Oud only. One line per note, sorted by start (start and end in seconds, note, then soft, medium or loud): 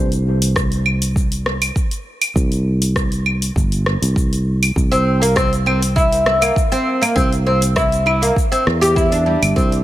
4.92 5.20 C4 medium
5.22 5.35 A#3 medium
5.36 5.51 C4 loud
5.66 5.81 C4 medium
5.96 6.25 E4 medium
6.26 6.40 E4 medium
6.42 6.55 A#3 medium
6.72 7.00 C4 loud
7.02 7.15 A#3 medium
7.16 7.31 C4 medium
7.47 7.61 C4 medium
7.76 8.05 E4 medium
8.06 8.20 E4 medium
8.22 8.36 A#3 medium
8.52 8.65 C4 medium
8.81 8.95 G4 medium
8.96 9.10 E4 medium
9.12 9.25 D4 medium
9.26 9.41 G3 medium
9.56 9.71 C4 medium